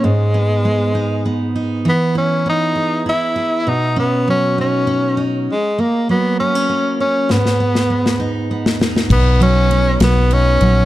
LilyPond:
<<
  \new Staff \with { instrumentName = "Tenor saxophone" } { \time 6/8 \key b \major \tempo 4. = 66 gis2~ gis8 r8 | b8 cis'8 dis'4 e'4 | dis'8 b8 cis'8 cis'4 r8 | gis8 ais8 b8 cis'4 cis'8 |
b2 r4 | b8 cis'4 b8 cis'4 | }
  \new Staff \with { instrumentName = "Steel-string acoustic guitar" } { \time 6/8 \key b \major gis,8 b8 gis8 dis'8 b8 dis'8 | e8 e'8 b8 gis'8 e'8 gis'8 | b,8 cis'8 fis8 dis'8 cis'8 dis'8 | r8 ais8 fis8 b16 cis'16 ais8 cis'8 |
gis,8 b8 gis8 dis'8 b8 dis'8 | r8 fis8 b8 fis8 dis'8 fis8 | }
  \new Staff \with { instrumentName = "Fingered electric bass" } { \clef bass \time 6/8 \key b \major r2. | r2. | r2. | r2. |
r2. | b,,4. b,,4 ais,,8 | }
  \new DrumStaff \with { instrumentName = "Drums" } \drummode { \time 6/8 r4. r4. | r4. r4. | r4. r4. | r4. r4. |
sn16 sn8 sn8 sn16 r8. sn16 sn16 sn16 | <cymc bd>8 cymr8 cymr8 <cymr sn>8 cymr8 cymr8 | }
>>